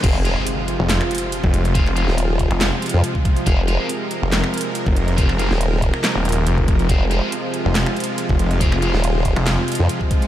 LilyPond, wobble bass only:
\new Staff \with { instrumentName = "Wobble bass" } { \clef bass \time 4/4 \key aes \major \tempo 4 = 140 f,,8. r2. r16 | r8. ees,,4 r4 f,16 r4 | f,,8. r2. r16 | r8. ees,,4 r2 r16 |
f,,8. r2. r16 | r8. ees,,4 r4 f,16 r4 | }